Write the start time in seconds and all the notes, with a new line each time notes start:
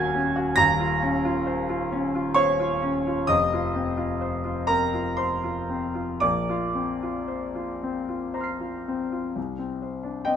Already playing: D#1 D#2 C#4 F#4 A#4 G#5 G#6
0.14 C#4
0.36 F#4
0.56 D#1 D#2 A#5 A#6
0.80 F4
1.02 C#4
1.25 F4
1.46 C5
1.69 F4
1.92 C#4
2.15 F4
2.34 C5 C#5 C#6
2.60 F4
2.82 C#4
3.07 F4
3.27 F1 F2 D#5 D#6
3.53 F4
3.75 C4
3.97 F4
4.21 C5
4.44 F4
4.67 C4 A#4 A#5
4.94 F4
5.17 C5 C6
5.44 F4
5.70 C4
5.95 F4
6.20 A#1 A#2 D5 D6
6.49 F4
6.75 C4
7.03 F4
7.28 C5
7.55 F4
7.83 C4
8.09 F4
8.34 C5 A#5 C6
8.40 F6 C7
8.60 F4
8.88 C4
9.12 F4
9.36 C2
9.59 C4
9.82 C5
10.03 D4
10.25 C4 D#5 G5